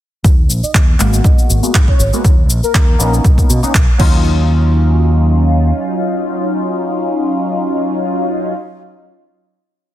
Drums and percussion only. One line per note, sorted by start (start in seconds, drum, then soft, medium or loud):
0.24 kick loud
0.24 cabasa soft
0.50 cabasa medium
0.64 cabasa soft
0.74 kick loud
0.74 clap loud
0.74 cabasa soft
1.00 clap medium
1.00 cabasa medium
1.13 cabasa soft
1.24 kick loud
1.24 cabasa soft
1.38 cabasa soft
1.50 cabasa medium
1.63 cabasa soft
1.74 kick loud
1.74 clap loud
1.74 cabasa soft
1.88 kick medium
2.00 cabasa medium
2.13 cabasa soft
2.25 kick loud
2.25 cabasa soft
2.50 cabasa medium
2.63 tambourine medium
2.63 cabasa soft
2.75 kick loud
2.75 clap loud
2.75 cabasa soft
3.00 cabasa medium
3.13 tambourine medium
3.13 cabasa soft
3.24 kick loud
3.24 cabasa soft
3.38 kick medium
3.38 cabasa soft
3.49 tambourine medium
3.49 cabasa medium
3.63 tambourine soft
3.63 cabasa soft
3.74 kick loud
3.74 clap loud
3.74 cabasa soft
4.00 kick loud
4.00 crash medium